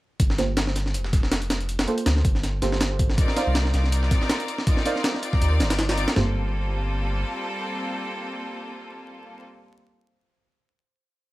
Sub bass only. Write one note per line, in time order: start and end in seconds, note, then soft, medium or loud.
0.20 0.96 G1 loud
0.94 1.86 F1 medium
2.06 2.23 D2 loud
2.25 2.61 G1 medium
2.62 3.17 G1 medium
3.47 3.72 C2 medium
3.74 4.10 C2 medium
5.42 5.62 D#2 medium
5.60 6.06 G1 loud
6.16 7.24 G1 loud